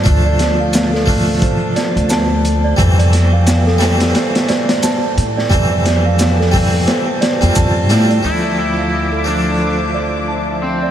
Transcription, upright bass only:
X:1
M:4/4
L:1/16
Q:"Swing 16ths" 1/4=88
K:Dm
V:1 name="Upright bass" clef=bass
D,,8 z3 D,,4- D,, | F,,8 z6 A,,2 | F,,8 z3 F,, F,,2 A,,2 | D,,16 |]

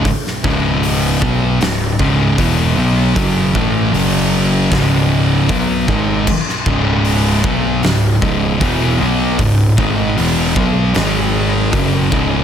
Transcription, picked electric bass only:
X:1
M:4/4
L:1/8
Q:1/4=77
K:C#m
V:1 name="Picked electric bass" clef=bass
z C,,,2 B,,, C,,, C,,, E,,, B,,, | F,,, A,,, F,,,2 C,,,2 B,,, G,,, | z C,,,2 B,,, C,,, C,,, E,,, B,,, | C,,, G,,, E,,, B,,, G,,,2 F,,, C,,, |]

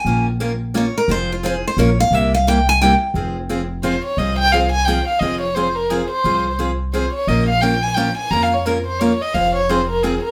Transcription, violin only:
X:1
M:3/4
L:1/8
Q:"Swing" 1/4=174
K:Fm
V:1 name="Violin"
z6 | z6 | z6 | z4 c d |
e g f a g f | e d c B A c- | c2 z2 c d | e f g a g a |
(3b f d B c d e | f d c B A B |]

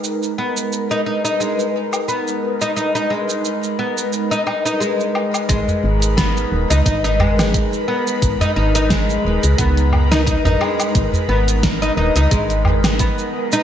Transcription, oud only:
X:1
M:4/4
L:1/16
Q:"Swing 16ths" 1/4=88
K:G#m
V:1 name="Oud"
z2 B,3 D D D G,4 B,3 D | D D G,4 B,3 D D D G,4 | G,4 B,3 D D D G,4 B,2- | B, D D D G,4 B,3 D D D G,2- |
G,2 B,3 D D D G,4 B,3 D |]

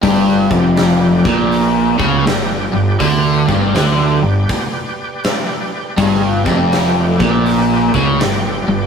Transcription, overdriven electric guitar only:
X:1
M:4/4
L:1/8
Q:"Swing" 1/4=81
K:Gmix
V:1 name="Overdriven electric guitar" clef=bass
G,, F,,2 _B,,2 ^C, G,, G,, | D, G,, D, G,, z4 | G,, F,,2 _B,,2 ^C, G,, G,, |]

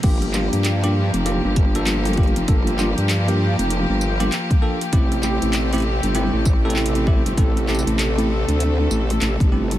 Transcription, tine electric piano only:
X:1
M:4/4
L:1/16
Q:"Swing 16ths" 1/4=98
K:Gdor
V:1 name="Tine electric piano"
[B,DFG]2 [B,DFG]3 [B,DFG] z2 [B,DFG] z2 [B,DFA]3 [B,DFG] z | [B,DFA]2 [B,DFG] z2 [B,DFG] z4 z [B,DFG] z2 [B,DFA] z | [A,CEG]2 [A,CEG]3 [A,CEG] z2 [A,CEG] z2 [A,CEA]3 [A,CEG] z | [A,CEA]2 [A,CEG] z2 [A,CEG] z8 [A,CEG] z |]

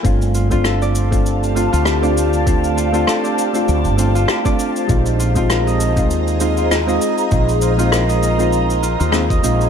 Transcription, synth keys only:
X:1
M:4/4
L:1/16
Q:"Swing 16ths" 1/4=99
K:Bbmix
V:1 name="Synth keys"
[=A,CDF]3 [A,CDF]4 [A,CDF]3 [A,CDF]3 [A,CDF]3 | [=A,CDF]3 [A,CDF]4 [A,CDF]3 [A,CDF]3 [A,CDF]3 | [A,CEF]3 [A,CEF]4 [A,CEF]3 [A,CEF]3 [A,CEF]3 | [A,CEF]3 [A,CEF]4 [A,CEF]3 z2 [A,CEF] z [A,CEF]2 |]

